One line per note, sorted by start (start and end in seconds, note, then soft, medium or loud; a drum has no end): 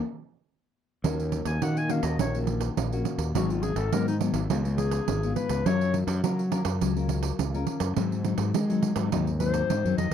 1.04 1.41 D#2 medium
1.04 1.59 D#3 medium
1.04 1.57 A#3 medium
1.04 1.57 C#4 medium
1.04 1.58 F#4 medium
1.04 pandeiro medium
1.20 pandeiro soft
1.32 pandeiro medium
1.45 1.58 D#2 medium
1.45 1.64 G#5 medium
1.45 pandeiro medium
1.62 2.17 A#2 medium
1.62 1.99 D#3 medium
1.62 1.79 A#3 soft
1.62 1.79 C#4 medium
1.62 1.79 F#4 medium
1.62 1.79 F#5 medium
1.62 pandeiro medium
1.77 1.92 G#5 medium
1.77 pandeiro soft
1.89 2.17 A#3 medium
1.89 2.17 C#4 medium
1.89 2.17 F#4 medium
1.89 2.05 F5 medium
1.89 pandeiro medium
2.03 2.16 D#2 medium
2.03 2.19 D#5 medium
2.03 pandeiro medium
2.19 2.68 A#1 medium
2.19 2.74 D#3 medium
2.19 2.37 C#5 medium
2.19 pandeiro medium
2.35 2.88 A#3 medium
2.35 2.88 C#4 medium
2.35 2.88 F#4 medium
2.35 pandeiro soft
2.47 pandeiro medium
2.61 pandeiro medium
2.77 3.02 A#1 medium
2.77 3.32 A#2 medium
2.77 pandeiro medium
2.92 3.31 A#3 medium
2.92 3.31 C#4 medium
2.92 3.31 F#4 medium
2.92 pandeiro soft
3.05 pandeiro medium
3.18 3.31 D#2 medium
3.18 pandeiro medium
3.35 3.72 G#1 loud
3.35 3.90 G#2 medium
3.35 3.72 F#3 soft
3.35 3.72 B3 medium
3.35 3.73 D#4 medium
3.35 3.52 F#4 medium
3.35 pandeiro medium
3.50 3.64 F4 medium
3.50 pandeiro soft
3.62 3.79 G#4 medium
3.62 pandeiro medium
3.76 3.89 G#1 medium
3.76 3.94 A4 medium
3.76 pandeiro medium
3.92 4.29 G#2 medium
3.92 4.48 D#3 medium
3.92 4.10 F#3 medium
3.92 4.10 B3 medium
3.92 4.10 D#4 medium
3.92 4.07 A#4 medium
3.92 pandeiro medium
4.08 4.16 D#4 medium
4.08 pandeiro soft
4.21 4.40 F#3 medium
4.21 4.40 B3 medium
4.21 4.40 D#4 medium
4.21 pandeiro medium
4.33 4.47 G#1 medium
4.33 pandeiro medium
4.50 4.99 C#2 medium
4.50 5.05 C#3 medium
4.50 4.60 G#3 medium
4.50 4.60 B3 medium
4.50 4.61 F4 medium
4.50 pandeiro medium
4.65 5.18 G#3 medium
4.65 5.19 B3 medium
4.65 5.19 F4 medium
4.65 pandeiro soft
4.78 5.32 G#4 medium
4.78 pandeiro medium
4.91 pandeiro medium
5.08 5.32 G#1 medium
5.08 5.63 G#2 soft
5.08 pandeiro medium
5.23 5.62 G#3 medium
5.23 5.62 B3 medium
5.23 5.62 F4 medium
5.23 pandeiro soft
5.36 5.67 B4 medium
5.36 pandeiro medium
5.49 5.62 C#2 medium
5.49 pandeiro medium
5.66 6.03 F#2 loud
5.66 6.21 F#3 medium
5.66 6.03 C#4 medium
5.66 6.03 F4 medium
5.66 6.04 A#4 medium
5.66 5.95 C#5 loud
5.66 pandeiro medium
5.81 pandeiro soft
5.94 pandeiro medium
6.07 6.20 F#2 medium
6.07 pandeiro medium
6.24 6.79 C#3 medium
6.24 6.60 F#3 medium
6.24 6.41 C#4 medium
6.24 6.41 F4 medium
6.24 6.41 A#4 medium
6.24 pandeiro medium
6.39 pandeiro soft
6.51 6.79 C#4 medium
6.51 6.79 F4 medium
6.51 6.79 A#4 medium
6.51 pandeiro medium
6.65 6.78 F#2 medium
6.65 pandeiro medium
6.81 7.30 C#2 medium
6.81 7.36 F#3 medium
6.81 pandeiro medium
6.96 7.49 C#4 medium
6.96 7.49 F4 medium
6.96 7.50 A#4 medium
6.96 pandeiro soft
7.09 pandeiro medium
7.23 pandeiro medium
7.39 7.63 C#2 medium
7.39 7.94 C#3 medium
7.39 pandeiro medium
7.54 7.93 C#4 medium
7.54 7.93 F4 medium
7.54 7.93 A#4 medium
7.54 pandeiro soft
7.67 pandeiro medium
7.80 7.93 F#2 medium
7.80 pandeiro medium
7.96 8.51 G#2 medium
7.96 8.34 G#2 loud
7.96 8.21 F#3 medium
7.96 8.21 C4 medium
7.96 8.21 D#4 medium
7.96 pandeiro medium
8.12 pandeiro soft
8.24 8.52 F#3 medium
8.24 8.52 C4 soft
8.24 8.53 D#4 medium
8.24 pandeiro medium
8.38 8.51 G#2 medium
8.38 pandeiro medium
8.54 9.09 D#3 medium
8.54 8.91 G#3 medium
8.54 pandeiro medium
8.69 8.93 F#3 medium
8.69 8.94 C4 medium
8.69 8.94 D#4 medium
8.69 pandeiro soft
8.83 pandeiro medium
8.96 9.09 G#2 medium
8.96 9.07 F#3 medium
8.96 9.07 C4 medium
8.96 9.07 D#4 medium
8.96 pandeiro medium
9.12 9.61 D#2 medium
9.12 9.67 G#2 medium
9.12 9.29 F#3 medium
9.12 9.30 C4 medium
9.12 9.30 D#4 medium
9.12 pandeiro medium
9.27 pandeiro soft
9.39 9.68 F#3 medium
9.39 9.68 C4 medium
9.39 9.68 D#4 medium
9.39 9.94 C5 medium
9.39 pandeiro medium
9.54 pandeiro medium
9.70 9.83 G#2 medium
9.70 10.14 D#3 medium
9.70 pandeiro medium
9.85 9.97 F#2 medium
9.85 10.09 F#3 medium
9.85 10.09 C4 medium
9.85 10.09 D#4 medium
9.85 pandeiro soft
9.98 10.10 F2 medium
9.98 10.14 D#5 medium
9.98 pandeiro medium